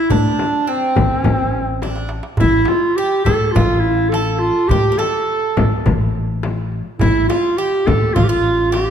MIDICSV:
0, 0, Header, 1, 6, 480
1, 0, Start_track
1, 0, Key_signature, 0, "minor"
1, 0, Tempo, 575816
1, 87, Time_signature, 4, 2, 24, 8
1, 7421, End_track
2, 0, Start_track
2, 0, Title_t, "Bouzouki"
2, 0, Program_c, 0, 25
2, 86, Note_on_c, 0, 62, 64
2, 562, Note_on_c, 0, 60, 64
2, 581, Note_off_c, 0, 62, 0
2, 1490, Note_off_c, 0, 60, 0
2, 1524, Note_on_c, 0, 62, 54
2, 1748, Note_off_c, 0, 62, 0
2, 2004, Note_on_c, 0, 64, 58
2, 2479, Note_off_c, 0, 64, 0
2, 2483, Note_on_c, 0, 67, 76
2, 2714, Note_off_c, 0, 67, 0
2, 2718, Note_on_c, 0, 69, 79
2, 2966, Note_on_c, 0, 65, 66
2, 2969, Note_off_c, 0, 69, 0
2, 3449, Note_on_c, 0, 69, 76
2, 3460, Note_off_c, 0, 65, 0
2, 3923, Note_off_c, 0, 69, 0
2, 3927, Note_on_c, 0, 67, 67
2, 4096, Note_off_c, 0, 67, 0
2, 4100, Note_on_c, 0, 70, 52
2, 4154, Note_off_c, 0, 70, 0
2, 4157, Note_on_c, 0, 69, 72
2, 4848, Note_off_c, 0, 69, 0
2, 5845, Note_on_c, 0, 64, 59
2, 6068, Note_off_c, 0, 64, 0
2, 6081, Note_on_c, 0, 65, 62
2, 6319, Note_off_c, 0, 65, 0
2, 6322, Note_on_c, 0, 67, 72
2, 6797, Note_off_c, 0, 67, 0
2, 6801, Note_on_c, 0, 65, 68
2, 6901, Note_off_c, 0, 65, 0
2, 6911, Note_on_c, 0, 65, 72
2, 7267, Note_off_c, 0, 65, 0
2, 7271, Note_on_c, 0, 67, 72
2, 7421, Note_off_c, 0, 67, 0
2, 7421, End_track
3, 0, Start_track
3, 0, Title_t, "Clarinet"
3, 0, Program_c, 1, 71
3, 0, Note_on_c, 1, 64, 77
3, 99, Note_on_c, 1, 62, 82
3, 112, Note_off_c, 1, 64, 0
3, 575, Note_on_c, 1, 60, 81
3, 587, Note_off_c, 1, 62, 0
3, 1000, Note_off_c, 1, 60, 0
3, 1000, Note_on_c, 1, 61, 81
3, 1117, Note_off_c, 1, 61, 0
3, 1117, Note_on_c, 1, 60, 81
3, 1242, Note_off_c, 1, 60, 0
3, 1242, Note_on_c, 1, 61, 81
3, 1350, Note_off_c, 1, 61, 0
3, 1350, Note_on_c, 1, 60, 81
3, 1770, Note_off_c, 1, 60, 0
3, 1999, Note_on_c, 1, 64, 90
3, 2237, Note_on_c, 1, 65, 77
3, 2249, Note_off_c, 1, 64, 0
3, 2469, Note_on_c, 1, 67, 87
3, 2482, Note_off_c, 1, 65, 0
3, 2697, Note_off_c, 1, 67, 0
3, 2702, Note_on_c, 1, 69, 84
3, 2930, Note_on_c, 1, 65, 81
3, 2942, Note_off_c, 1, 69, 0
3, 3167, Note_on_c, 1, 64, 76
3, 3180, Note_off_c, 1, 65, 0
3, 3412, Note_on_c, 1, 69, 82
3, 3424, Note_off_c, 1, 64, 0
3, 3657, Note_on_c, 1, 65, 82
3, 3670, Note_off_c, 1, 69, 0
3, 3900, Note_on_c, 1, 67, 97
3, 3912, Note_off_c, 1, 65, 0
3, 4148, Note_on_c, 1, 69, 90
3, 4160, Note_off_c, 1, 67, 0
3, 4877, Note_off_c, 1, 69, 0
3, 5836, Note_on_c, 1, 64, 87
3, 6063, Note_off_c, 1, 64, 0
3, 6067, Note_on_c, 1, 65, 76
3, 6312, Note_on_c, 1, 67, 88
3, 6324, Note_off_c, 1, 65, 0
3, 6555, Note_on_c, 1, 69, 78
3, 6567, Note_off_c, 1, 67, 0
3, 6783, Note_on_c, 1, 65, 81
3, 6796, Note_off_c, 1, 69, 0
3, 6865, Note_on_c, 1, 67, 71
3, 6878, Note_off_c, 1, 65, 0
3, 6903, Note_on_c, 1, 65, 86
3, 6916, Note_off_c, 1, 67, 0
3, 7257, Note_on_c, 1, 67, 79
3, 7270, Note_off_c, 1, 65, 0
3, 7421, Note_off_c, 1, 67, 0
3, 7421, End_track
4, 0, Start_track
4, 0, Title_t, "Upright bass"
4, 0, Program_c, 2, 32
4, 90, Note_on_c, 2, 45, 80
4, 283, Note_off_c, 2, 45, 0
4, 811, Note_on_c, 2, 33, 78
4, 907, Note_off_c, 2, 33, 0
4, 1046, Note_on_c, 2, 33, 76
4, 1825, Note_off_c, 2, 33, 0
4, 2011, Note_on_c, 2, 33, 83
4, 2203, Note_off_c, 2, 33, 0
4, 2727, Note_on_c, 2, 45, 76
4, 2921, Note_off_c, 2, 45, 0
4, 2965, Note_on_c, 2, 33, 88
4, 3744, Note_off_c, 2, 33, 0
4, 3921, Note_on_c, 2, 45, 81
4, 4118, Note_off_c, 2, 45, 0
4, 4649, Note_on_c, 2, 33, 78
4, 4745, Note_off_c, 2, 33, 0
4, 4892, Note_on_c, 2, 33, 78
4, 5668, Note_off_c, 2, 33, 0
4, 5858, Note_on_c, 2, 33, 87
4, 6047, Note_off_c, 2, 33, 0
4, 6566, Note_on_c, 2, 45, 88
4, 6760, Note_off_c, 2, 45, 0
4, 6809, Note_on_c, 2, 33, 90
4, 7421, Note_off_c, 2, 33, 0
4, 7421, End_track
5, 0, Start_track
5, 0, Title_t, "Darbuka"
5, 82, Note_on_c, 9, 64, 79
5, 165, Note_off_c, 9, 64, 0
5, 203, Note_on_c, 9, 62, 22
5, 287, Note_off_c, 9, 62, 0
5, 567, Note_on_c, 9, 62, 22
5, 651, Note_off_c, 9, 62, 0
5, 799, Note_on_c, 9, 64, 74
5, 882, Note_off_c, 9, 64, 0
5, 1034, Note_on_c, 9, 64, 85
5, 1117, Note_off_c, 9, 64, 0
5, 1516, Note_on_c, 9, 63, 47
5, 1600, Note_off_c, 9, 63, 0
5, 1631, Note_on_c, 9, 62, 56
5, 1714, Note_off_c, 9, 62, 0
5, 1741, Note_on_c, 9, 63, 65
5, 1824, Note_off_c, 9, 63, 0
5, 1860, Note_on_c, 9, 62, 70
5, 1943, Note_off_c, 9, 62, 0
5, 1977, Note_on_c, 9, 64, 99
5, 2060, Note_off_c, 9, 64, 0
5, 2099, Note_on_c, 9, 62, 21
5, 2183, Note_off_c, 9, 62, 0
5, 2212, Note_on_c, 9, 63, 65
5, 2295, Note_off_c, 9, 63, 0
5, 2587, Note_on_c, 9, 62, 24
5, 2671, Note_off_c, 9, 62, 0
5, 2708, Note_on_c, 9, 64, 72
5, 2792, Note_off_c, 9, 64, 0
5, 2961, Note_on_c, 9, 64, 81
5, 3044, Note_off_c, 9, 64, 0
5, 3437, Note_on_c, 9, 63, 57
5, 3520, Note_off_c, 9, 63, 0
5, 3681, Note_on_c, 9, 62, 27
5, 3764, Note_off_c, 9, 62, 0
5, 3912, Note_on_c, 9, 64, 82
5, 3995, Note_off_c, 9, 64, 0
5, 4033, Note_on_c, 9, 62, 25
5, 4117, Note_off_c, 9, 62, 0
5, 4152, Note_on_c, 9, 63, 58
5, 4236, Note_off_c, 9, 63, 0
5, 4517, Note_on_c, 9, 62, 22
5, 4601, Note_off_c, 9, 62, 0
5, 4642, Note_on_c, 9, 64, 81
5, 4725, Note_off_c, 9, 64, 0
5, 4882, Note_on_c, 9, 64, 85
5, 4966, Note_off_c, 9, 64, 0
5, 5363, Note_on_c, 9, 63, 62
5, 5446, Note_off_c, 9, 63, 0
5, 5479, Note_on_c, 9, 62, 24
5, 5563, Note_off_c, 9, 62, 0
5, 5601, Note_on_c, 9, 62, 26
5, 5685, Note_off_c, 9, 62, 0
5, 5830, Note_on_c, 9, 64, 88
5, 5914, Note_off_c, 9, 64, 0
5, 5949, Note_on_c, 9, 62, 24
5, 6032, Note_off_c, 9, 62, 0
5, 6085, Note_on_c, 9, 63, 70
5, 6169, Note_off_c, 9, 63, 0
5, 6452, Note_on_c, 9, 62, 22
5, 6536, Note_off_c, 9, 62, 0
5, 6565, Note_on_c, 9, 64, 81
5, 6649, Note_off_c, 9, 64, 0
5, 6803, Note_on_c, 9, 64, 84
5, 6886, Note_off_c, 9, 64, 0
5, 7283, Note_on_c, 9, 63, 64
5, 7366, Note_off_c, 9, 63, 0
5, 7421, End_track
6, 0, Start_track
6, 0, Title_t, "Frame drum"
6, 89, Note_on_c, 9, 64, 80
6, 173, Note_off_c, 9, 64, 0
6, 328, Note_on_c, 9, 64, 68
6, 411, Note_off_c, 9, 64, 0
6, 804, Note_on_c, 9, 64, 90
6, 887, Note_off_c, 9, 64, 0
6, 1039, Note_on_c, 9, 64, 83
6, 1122, Note_off_c, 9, 64, 0
6, 1520, Note_on_c, 9, 64, 66
6, 1604, Note_off_c, 9, 64, 0
6, 1999, Note_on_c, 9, 64, 81
6, 2083, Note_off_c, 9, 64, 0
6, 2234, Note_on_c, 9, 64, 64
6, 2318, Note_off_c, 9, 64, 0
6, 2720, Note_on_c, 9, 64, 92
6, 2803, Note_off_c, 9, 64, 0
6, 2965, Note_on_c, 9, 64, 94
6, 3049, Note_off_c, 9, 64, 0
6, 3442, Note_on_c, 9, 64, 55
6, 3525, Note_off_c, 9, 64, 0
6, 3925, Note_on_c, 9, 64, 82
6, 4008, Note_off_c, 9, 64, 0
6, 4163, Note_on_c, 9, 64, 60
6, 4246, Note_off_c, 9, 64, 0
6, 4644, Note_on_c, 9, 64, 99
6, 4728, Note_off_c, 9, 64, 0
6, 4885, Note_on_c, 9, 64, 85
6, 4968, Note_off_c, 9, 64, 0
6, 5362, Note_on_c, 9, 64, 69
6, 5446, Note_off_c, 9, 64, 0
6, 5843, Note_on_c, 9, 64, 87
6, 5927, Note_off_c, 9, 64, 0
6, 6085, Note_on_c, 9, 64, 78
6, 6169, Note_off_c, 9, 64, 0
6, 6560, Note_on_c, 9, 64, 90
6, 6644, Note_off_c, 9, 64, 0
6, 6802, Note_on_c, 9, 64, 81
6, 6886, Note_off_c, 9, 64, 0
6, 7285, Note_on_c, 9, 64, 65
6, 7368, Note_off_c, 9, 64, 0
6, 7421, End_track
0, 0, End_of_file